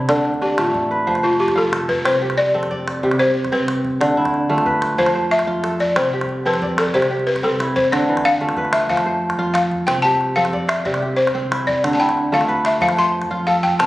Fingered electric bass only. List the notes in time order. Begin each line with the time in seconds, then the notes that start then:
0.09 D2
0.59 A1
1.07 F1
1.57 F1
2.05 C2
2.54 F1
3.03 C2
3.52 C2
4.01 D2
4.50 D2
4.99 F2
5.48 F2
5.97 C2
6.46 F2
6.94 C2
7.43 C2
7.93 D2
8.41 D2
8.90 F2
9.39 F2
9.88 C2
10.37 F2
10.86 C2
11.35 C2
11.84 D2
12.33 D2
12.81 F2
13.31 F2
13.81 C2